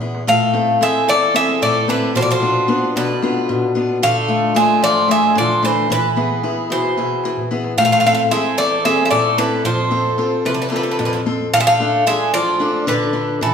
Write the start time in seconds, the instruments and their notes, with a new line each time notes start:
Already playing: steel-string acoustic guitar E2
0.00 steel-string acoustic guitar B3 E4 G#4, darbuka tek
0.15 darbuka tek
0.27 steel-string acoustic guitar A2, bouzouki A3 F5, darbuka dum
0.53 steel-string acoustic guitar C4 E4 A4, darbuka tek
0.81 bouzouki G#3 E5, steel-string acoustic guitar C4 E4 A4, darbuka tek
1.08 steel-string acoustic guitar E2, bouzouki A3 D5, darbuka tek
1.34 bouzouki G#3 E5, steel-string acoustic guitar C4 E4 A4, darbuka tek
1.62 steel-string acoustic guitar A2, bouzouki A3 D5, darbuka tek, darbuka dum
1.88 bouzouki D3 B4, steel-string acoustic guitar C4 E4 A4, darbuka tek
2.15 steel-string acoustic guitar B2, bouzouki F3 C5, darbuka dum
2.21 bouzouki F3 D5
2.31 bouzouki F3 C5
2.42 steel-string acoustic guitar B2 D4 F4, darbuka tek
2.68 steel-string acoustic guitar B3 D4 F4, darbuka tek
2.83 darbuka tek
2.96 steel-string acoustic guitar B2, bouzouki D3 B4, darbuka tek
3.22 steel-string acoustic guitar B3 D4 F4, darbuka tek
3.49 steel-string acoustic guitar B2, darbuka tek, darbuka dum
3.75 steel-string acoustic guitar B3 D4 F4, darbuka tek
4.03 steel-string acoustic guitar D3, bouzouki A3 F5, darbuka dum
4.28 steel-string acoustic guitar A3 D4 F4, darbuka tek
4.54 bouzouki G#3 E5, steel-string acoustic guitar A3 D4 F4, darbuka tek
4.82 steel-string acoustic guitar A2, bouzouki F3 D5, darbuka tek
4.98 darbuka tek
5.08 bouzouki G#3 E5, steel-string acoustic guitar A3 D4 F4, darbuka tek
5.35 steel-string acoustic guitar D3, bouzouki F3 D5, darbuka tek, darbuka dum
5.63 bouzouki E3 C5, steel-string acoustic guitar A3 D4 F4, darbuka tek
5.90 steel-string acoustic guitar E3, bouzouki E3 B4, darbuka dum
6.16 steel-string acoustic guitar B3 E4 G#4, darbuka tek
6.31 darbuka tek
6.43 steel-string acoustic guitar B3 E4 G#4, darbuka tek
6.58 darbuka tek
6.70 steel-string acoustic guitar B2, bouzouki E3 C5, darbuka tek
6.97 steel-string acoustic guitar B2 E4 G#4, darbuka tek
7.10 darbuka tek
7.24 steel-string acoustic guitar E3, darbuka tek
7.37 darbuka dum
7.51 steel-string acoustic guitar B3 E4 G#4, darbuka tek
7.64 darbuka tek
7.77 steel-string acoustic guitar A2, bouzouki A3 F5, darbuka dum
7.85 bouzouki A3 F5
7.92 bouzouki A3 F5
8.00 bouzouki A3 F5, darbuka tek
8.05 bouzouki A3 F5, steel-string acoustic guitar C4 E4 A4
8.15 bouzouki A3 F5
8.31 bouzouki G#3 E5, steel-string acoustic guitar C4 E4 A4, darbuka tek
8.58 steel-string acoustic guitar E2, bouzouki A3 D5, darbuka tek
8.84 bouzouki G#3 E5, steel-string acoustic guitar C4 E4 A4, darbuka tek
9.05 bouzouki G#3 E5
9.11 steel-string acoustic guitar A2, bouzouki A3 D5, darbuka tek, darbuka dum
9.38 bouzouki D3 B4, steel-string acoustic guitar C4 E4 A4, darbuka tek
9.65 steel-string acoustic guitar F2, bouzouki F3 C5, darbuka dum
9.91 steel-string acoustic guitar C4 F4 A4, darbuka tek
10.18 steel-string acoustic guitar C4 F4 A4, darbuka tek
10.32 darbuka tek
10.45 steel-string acoustic guitar C3, bouzouki F3 B4, darbuka tek
10.54 bouzouki D3 B4
10.59 bouzouki D3 B4, darbuka tek
10.69 bouzouki D3 B4, steel-string acoustic guitar C4 F4 A4
10.73 bouzouki D3 B4, darbuka tek
10.83 bouzouki D3 B4
10.91 bouzouki D3 B4
10.99 steel-string acoustic guitar F2, bouzouki D3 B4, darbuka tek, darbuka dum
11.05 bouzouki D3 B4
11.13 bouzouki D3 B4
11.26 steel-string acoustic guitar C4 F4 A4, darbuka tek
11.53 steel-string acoustic guitar D3, bouzouki A3 F5, darbuka dum
11.60 bouzouki G#3 E5
11.67 bouzouki A3 F5
11.80 steel-string acoustic guitar D4 F4 A4, darbuka tek
12.06 bouzouki G#3 E5, steel-string acoustic guitar D4 F4 A4, darbuka tek
12.33 steel-string acoustic guitar A2, bouzouki F3 D5, darbuka tek
12.48 darbuka tek
12.60 steel-string acoustic guitar D4 F4 A4, darbuka tek
12.87 steel-string acoustic guitar D3, bouzouki D3 B4, darbuka tek, darbuka dum
13.13 steel-string acoustic guitar D4 F4 A4, darbuka tek
13.41 steel-string acoustic guitar E3, bouzouki E3 A4, darbuka dum